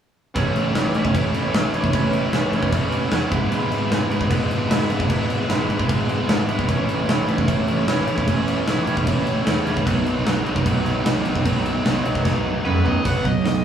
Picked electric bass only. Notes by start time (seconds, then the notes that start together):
0.36 A1
0.55 A1
0.75 A1
0.95 A1
1.15 A1
1.34 A1
1.54 A1
1.74 A1
1.94 A1
2.33 A1
2.52 A1
2.72 A1
3.12 E2
3.32 G#1
3.52 G#1
3.70 G#1
3.90 G#1
4.09 G#1
4.31 G#1
4.49 G#1
4.70 G#1
4.89 G#1
5.10 G#1
5.49 G#1
5.69 G#1
5.89 G#1
6.29 G#1
6.69 A1
6.89 A1
7.08 A1
7.27 A1
7.48 A1
7.67 A1
7.87 A1
8.07 A1
8.28 A1
8.67 A1
8.87 A1
9.07 A1
9.47 E2
9.87 B1
10.06 B1
10.26 B1
10.47 B1
10.66 B1
10.85 B1
11.05 B1
11.25 B1
11.45 B1
11.85 B1
12.05 B1
12.25 B1
12.65 F#2
13.05 B1
13.25 B1
13.45 B1